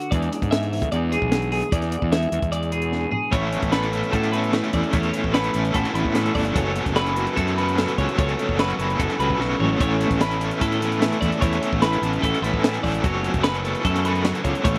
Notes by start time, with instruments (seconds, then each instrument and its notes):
Already playing: clean electric guitar D3 F#4
0.02 closed hi-hat
0.11 clean electric guitar E2 E3 G#3 D4 G#4 D5, fingered electric bass E2, kick, closed hi-hat
0.22 closed hi-hat
0.31 clean electric guitar D4, snare, closed hi-hat
0.42 fingered electric bass G#2, kick, closed hi-hat
0.51 clean electric guitar G#3 E5, snare, closed hi-hat
0.63 snare, closed hi-hat
0.71 clean electric guitar E3, open hi-hat
0.82 fingered electric bass D2, kick, closed hi-hat
0.92 fingered electric bass E2, clean electric guitar G#4 D5, closed hi-hat
1.12 clean electric guitar B2 G#4, snare, closed hi-hat
1.22 fingered electric bass B1, kick
1.32 clean electric guitar D4, snare, closed hi-hat
1.42 closed hi-hat
1.52 clean electric guitar G#4, open hi-hat
1.62 closed hi-hat
1.72 clean electric guitar E2 G#4 D5, fingered electric bass E2, kick, closed hi-hat
1.82 snare, closed hi-hat
1.91 clean electric guitar B3, closed hi-hat
2.02 fingered electric bass E2, clean electric guitar D4, kick
2.12 clean electric guitar G#3 E5, snare, closed hi-hat
2.22 closed hi-hat
2.32 fingered electric bass E2, clean electric guitar E3, closed hi-hat
2.42 fingered electric bass E2, kick, closed hi-hat
2.52 clean electric guitar G#4 D5, closed hi-hat
2.63 closed hi-hat
2.72 clean electric guitar B2 G#4, closed hi-hat
2.82 closed hi-hat
2.92 clean electric guitar D4, snare
3.11 clean electric guitar G#4, floor tom
3.31 fingered electric bass A1, clean electric guitar A2 B3 C#5, overdriven electric guitar A3 C#4 E4 A4, kick, closed hi-hat
3.42 clean electric guitar C#4
3.53 clean electric guitar B3, closed hi-hat
3.63 fingered electric bass A1, kick, closed hi-hat
3.72 clean electric guitar E3 A4 B4, overdriven electric guitar A3 C#4 E4 A4, snare, closed hi-hat
3.83 snare, closed hi-hat
3.92 clean electric guitar C#4, overdriven electric guitar C#4 E4 A4, closed hi-hat
4.04 closed hi-hat
4.12 fingered electric bass A2, overdriven electric guitar A3 C#4 E4 A4, clean electric guitar F#4 A4, kick, closed hi-hat
4.23 closed hi-hat
4.32 clean electric guitar E2 C#4 B4, overdriven electric guitar C#4 E4 A4, closed hi-hat
4.44 closed hi-hat
4.52 overdriven electric guitar A3 C#4 E4 A4, snare, closed hi-hat
4.64 closed hi-hat
4.73 fingered electric bass E2, clean electric guitar A4 D5, kick, closed hi-hat
4.83 closed hi-hat
4.93 fingered electric bass E2, clean electric guitar A2 B3 C#5, overdriven electric guitar A3 C#4 E4 A4, kick, closed hi-hat
5.03 clean electric guitar C#4, closed hi-hat
5.14 clean electric guitar B3, closed hi-hat
5.24 fingered electric bass A1, kick
5.34 clean electric guitar E3 A4 B4, overdriven electric guitar A3 C#4 E4 A4, snare, closed hi-hat
5.44 closed hi-hat
5.53 fingered electric bass A1, clean electric guitar C#4, overdriven electric guitar C#4 E4 A4, closed hi-hat
5.65 closed hi-hat
5.74 fingered electric bass A1, overdriven electric guitar A3 C#4 E4 A4, clean electric guitar F#4 A4, kick, closed hi-hat
5.85 snare, closed hi-hat
5.93 fingered electric bass A1, clean electric guitar E2 C#4 B4, overdriven electric guitar C#4 E4 A4, closed hi-hat
6.05 fingered electric bass A2, kick
6.14 overdriven electric guitar A3 C#4 E4 A4, snare, closed hi-hat
6.26 closed hi-hat
6.35 fingered electric bass G1, clean electric guitar A4 D5, kick, open hi-hat
6.45 closed hi-hat
6.54 fingered electric bass F#1, clean electric guitar F#2 B3 C#5, overdriven electric guitar F#3 C#4 F#4 A4, kick, closed hi-hat
6.76 clean electric guitar A3, closed hi-hat
6.86 fingered electric bass F#1, kick, snare, closed hi-hat
6.95 overdriven electric guitar F#3 C#4 F#4 A4, clean electric guitar F#3 E4 B4, snare, closed hi-hat
7.07 closed hi-hat
7.15 clean electric guitar B3, overdriven electric guitar C#4 F#4 A4, closed hi-hat
7.27 closed hi-hat
7.35 fingered electric bass F#2, overdriven electric guitar F#3 C#4 F#4 A4, clean electric guitar E4 A4, kick, closed hi-hat
7.48 closed hi-hat
7.56 clean electric guitar C#3 B3 B4, overdriven electric guitar C#4 F#4 A4, closed hi-hat
7.69 closed hi-hat
7.76 overdriven electric guitar F#3 C#4 F#4 A4, snare, closed hi-hat
7.88 closed hi-hat
7.98 fingered electric bass C#2, clean electric guitar E4 C#5, kick, closed hi-hat
8.09 clean electric guitar F#4, closed hi-hat
8.17 fingered electric bass C#2, clean electric guitar F#2 B3 C#5, overdriven electric guitar F#3 C#4 F#4 A4, kick, closed hi-hat
8.29 closed hi-hat
8.39 clean electric guitar A3, closed hi-hat
8.49 fingered electric bass F#1, kick
8.58 overdriven electric guitar F#3 C#4 F#4 A4, clean electric guitar F#3 E4 B4, snare, closed hi-hat
8.70 closed hi-hat
8.78 fingered electric bass F#1, clean electric guitar B3, overdriven electric guitar C#4 F#4 A4, closed hi-hat
8.90 closed hi-hat
8.98 fingered electric bass F#1, overdriven electric guitar F#3 C#4 F#4 A4, clean electric guitar E4 A4, kick, closed hi-hat
9.10 snare, closed hi-hat
9.18 fingered electric bass C#2, clean electric guitar C#3 B3 B4, overdriven electric guitar C#4 F#4 A4, closed hi-hat
9.30 kick
9.39 fingered electric bass B1, clean electric guitar F#2, overdriven electric guitar F#3 C#4 F#4 A4, snare
9.59 fingered electric bass A1, clean electric guitar G#2 C#5, floor tom
9.79 fingered electric bass A1, clean electric guitar A2 C#4 C#5, overdriven electric guitar A3 C#4 E4 A4, kick, closed hi-hat
10.00 clean electric guitar B3, closed hi-hat
10.10 fingered electric bass A1, kick, snare, closed hi-hat
10.20 clean electric guitar E3 A4 B4, overdriven electric guitar A3 C#4 E4 A4, snare, closed hi-hat
10.31 snare, closed hi-hat
10.39 overdriven electric guitar C#4 E4 A4, clean electric guitar C#4, closed hi-hat
10.51 closed hi-hat
10.60 fingered electric bass A2, overdriven electric guitar A3 C#4 E4 A4, clean electric guitar E4 A4, kick, closed hi-hat
10.71 clean electric guitar F#4, closed hi-hat
10.80 clean electric guitar E2 B3 B4, overdriven electric guitar C#4 E4 A4, closed hi-hat
10.92 clean electric guitar C#4, closed hi-hat
11.00 overdriven electric guitar A3 C#4 E4 A4, snare, closed hi-hat
11.13 closed hi-hat
11.21 fingered electric bass E2, clean electric guitar A4 D5, kick, closed hi-hat
11.32 closed hi-hat
11.41 fingered electric bass E2, clean electric guitar A2 C#4 C#5, overdriven electric guitar A3 C#4 E4 A4, kick, closed hi-hat
11.53 closed hi-hat
11.63 clean electric guitar B3, closed hi-hat
11.73 fingered electric bass A1, kick
11.82 clean electric guitar E3 A4 B4, overdriven electric guitar A3 C#4 E4 A4, snare, closed hi-hat
11.93 closed hi-hat
12.02 fingered electric bass A1, clean electric guitar B3, overdriven electric guitar C#4 E4 A4, closed hi-hat
12.13 clean electric guitar C#4, closed hi-hat
12.22 fingered electric bass A1, overdriven electric guitar A3 C#4 E4 A4, clean electric guitar F#4 A4, kick, closed hi-hat
12.35 closed hi-hat
12.42 fingered electric bass A1, clean electric guitar E2 C#4 B4, overdriven electric guitar C#4 E4 A4, closed hi-hat
12.54 fingered electric bass A2, kick
12.63 clean electric guitar A2, overdriven electric guitar A3 C#4 E4 A4, snare, closed hi-hat
12.74 closed hi-hat
12.83 fingered electric bass A1, clean electric guitar G#2 D5, kick, open hi-hat
12.94 closed hi-hat
13.02 fingered electric bass F#1, clean electric guitar F#2 B3 C#5, overdriven electric guitar F#3 C#4 F#4 A4, kick, closed hi-hat
13.24 clean electric guitar A3, closed hi-hat
13.34 fingered electric bass F#1, kick, closed hi-hat
13.43 clean electric guitar F#3 E4 B4, overdriven electric guitar F#3 C#4 F#4 A4, snare, closed hi-hat
13.54 closed hi-hat
13.64 clean electric guitar B3, overdriven electric guitar C#4 F#4 A4, closed hi-hat
13.75 closed hi-hat
13.84 fingered electric bass F#2, overdriven electric guitar F#3 C#4 F#4 A4, clean electric guitar E4 A4, kick, closed hi-hat
13.96 snare, closed hi-hat
14.04 clean electric guitar C#3 B3 B4, overdriven electric guitar C#4 F#4 A4, closed hi-hat
14.15 closed hi-hat
14.24 clean electric guitar F#2, overdriven electric guitar F#3 C#4 F#4 A4, snare, closed hi-hat
14.35 closed hi-hat
14.44 fingered electric bass C#2, clean electric guitar G#2 C#5, kick, closed hi-hat
14.55 closed hi-hat
14.64 fingered electric bass A1, clean electric guitar A2 B3 C#5, overdriven electric guitar A3 C#4 E4 A4, kick, closed hi-hat